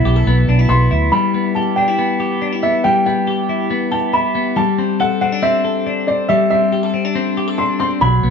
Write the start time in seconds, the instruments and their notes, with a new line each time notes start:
Already playing: clean electric guitar F#3 B3 E4
0.05 fingered electric bass B1, clean electric guitar G4
0.16 clean electric guitar A4
0.27 fingered electric bass B1, clean electric guitar B3
0.48 fingered electric bass B1, clean electric guitar D4
0.59 clean electric guitar E4
0.69 fingered electric bass B1, clean electric guitar B3, upright piano C6
0.91 fingered electric bass D2, clean electric guitar E4
1.12 clean electric guitar G3, upright piano B5
1.34 clean electric guitar B3
1.55 clean electric guitar G4, upright piano A5
1.76 clean electric guitar D4, upright piano G5
1.88 clean electric guitar E4
1.99 clean electric guitar B3
2.20 clean electric guitar G4
2.42 clean electric guitar D4
2.53 clean electric guitar E4
2.63 clean electric guitar B3, upright piano E5
2.84 clean electric guitar G3, upright piano G5
3.06 clean electric guitar B3, upright piano G5
3.27 clean electric guitar G4
3.49 clean electric guitar E4
3.70 clean electric guitar B3
3.91 clean electric guitar G4, upright piano A5
4.13 clean electric guitar E4, upright piano B5
4.35 clean electric guitar B3
4.56 clean electric guitar G3, upright piano A5
4.78 clean electric guitar C4
5.00 clean electric guitar A4, upright piano F#5
5.21 clean electric guitar C4, upright piano F#5
5.32 clean electric guitar D4
5.43 clean electric guitar C4, upright piano E5
5.65 clean electric guitar A4
5.87 clean electric guitar D4
6.07 clean electric guitar C4, upright piano D5
6.29 clean electric guitar G3, upright piano E5
6.50 clean electric guitar C4, upright piano E5
6.73 clean electric guitar G4
6.83 clean electric guitar A4
6.94 clean electric guitar C4
7.05 clean electric guitar D4
7.15 clean electric guitar C4
7.37 clean electric guitar G4
7.48 clean electric guitar A4
7.58 clean electric guitar D4, upright piano C6
7.80 clean electric guitar C4, upright piano C6
8.01 fingered electric bass B1, clean electric guitar F#3, upright piano B5
8.23 fingered electric bass B1, clean electric guitar B3